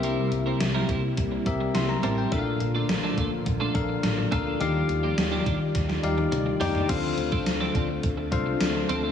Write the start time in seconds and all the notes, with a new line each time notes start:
Already playing: C2 C3 G3 A#3 C4 E4 G4 A#4 E5
0.03 G3 C4 E4 A#4, closed hi-hat
0.32 C2, muted clean electric guitar stroke, closed hi-hat
0.46 G3 C4 E4 A#4
0.60 C2, muted clean electric guitar stroke, snare, closed hi-hat
0.74 G3 C4 E4 A#4
0.89 C3 G3 C4 E4 A#4, kick, closed hi-hat
1.03 muted clean electric guitar stroke
1.17 C2, muted clean electric guitar stroke, kick, closed hi-hat
1.32 muted clean electric guitar stroke
1.46 C2 C4 G4 A#4 E5, kick, closed hi-hat
1.60 muted clean electric guitar stroke
1.75 C2 C6, muted clean electric guitar stroke, snare, closed hi-hat
1.89 A#5, muted clean electric guitar stroke
2.03 A1 G3 C4 E4 A#4 A5, closed hi-hat
2.17 G3 C4 E4 A#4 G5
2.31 A#1 A#2 D3 F3 A3 D4 F4 A4 A#4 E5, kick, closed hi-hat
2.39 F5
2.60 A#1, muted clean electric guitar stroke, closed hi-hat
2.75 A3 D4 F4 A4
2.89 A#1, muted clean electric guitar stroke, snare, closed hi-hat
3.03 A3 D4 F4 A4
3.17 A#2 A3 D4 F4 A4, kick, closed hi-hat
3.32 muted clean electric guitar stroke
3.46 A#1, muted clean electric guitar stroke, kick, closed hi-hat
3.60 A3 D4 F4 A4
3.74 A#1 D4 A4 A#4 F5, muted clean electric guitar stroke, kick, closed hi-hat
3.89 muted clean electric guitar stroke
4.03 A1, muted clean electric guitar stroke, snare, closed hi-hat
4.17 muted clean electric guitar stroke
4.31 D2 A3 D4 F4 A4 A#4 F5, kick, closed hi-hat
4.46 A3 D4 F4 A4
4.60 D#2 D#3 F3 G3 A#3 D4 D#4 G4 D5 F5, closed hi-hat
4.89 D#2, muted clean electric guitar stroke, closed hi-hat
5.03 F3 A#3 D4 G4
5.17 D#2, muted clean electric guitar stroke, snare, closed hi-hat
5.32 F3 A#3 D4 G4
5.46 D#3 F3 A#3 D4 G4, kick, closed hi-hat
5.60 muted clean electric guitar stroke
5.75 D#2, muted clean electric guitar stroke, kick, snare, closed hi-hat
5.89 muted clean electric guitar stroke, snare
6.03 D#2 D#4 G4 D5 F5, closed hi-hat
6.18 muted clean electric guitar stroke, high tom
6.32 D2, muted clean electric guitar stroke, closed hi-hat, mid tom
6.46 muted clean electric guitar stroke
6.60 C#2 F3 A#3 D4 D#4 G4 D5 G5, floor tom, open hi-hat
6.74 F3 A#3 D4 G4, floor tom
6.89 D2 D3 F3 A3 C4 D4 F4 A4 C5 F5, kick, closed hi-hat, crash
7.18 D2, muted clean electric guitar stroke, closed hi-hat
7.32 F3 C4 D4 A4, kick
7.46 D2, muted clean electric guitar stroke, snare, closed hi-hat, tambourine
7.60 F3 C4 D4 A4
7.75 D2 F3 C4 D4 A4, kick, closed hi-hat
7.89 muted clean electric guitar stroke
8.03 D2, muted clean electric guitar stroke, kick, closed hi-hat
8.17 muted clean electric guitar stroke
8.32 C2 D4 F4 A4 C5 F5, kick, closed hi-hat
8.46 muted clean electric guitar stroke
8.60 D2, muted clean electric guitar stroke, snare, closed hi-hat, tambourine
8.75 muted clean electric guitar stroke
8.89 D2 F3 C4 D4 A4, closed hi-hat
9.03 F3 C4 D4 A4